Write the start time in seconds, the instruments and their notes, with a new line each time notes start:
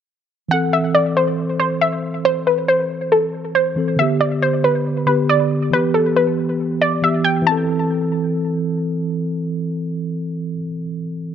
0.49 tine electric piano E3 C4, synth pluck F#5
0.53 tine electric piano A4
0.73 synth pluck E5
0.95 synth pluck D5
1.17 synth pluck C5
1.60 synth pluck C5
1.81 synth pluck E5
2.25 synth pluck C5
2.47 synth pluck B4
2.68 synth pluck C5
3.12 synth pluck A4
3.55 synth pluck C5
3.76 tine electric piano E3 C4 A4
3.96 tine electric piano D3 B3, synth pluck E5
4.01 tine electric piano G4
4.21 synth pluck D5
4.42 synth pluck C5
4.64 synth pluck B4
5.06 tine electric piano D3 B3 G4, synth pluck B4
5.29 synth pluck D5
5.70 tine electric piano E3 B3, synth pluck B4
5.75 tine electric piano G4
5.94 synth pluck A4
6.16 synth pluck B4
6.81 synth pluck D5
7.02 tine electric piano E3 B3 G4, synth pluck E5
7.24 synth pluck G5
7.42 tine electric piano E3
7.47 tine electric piano C4, synth pluck A5
7.52 tine electric piano A4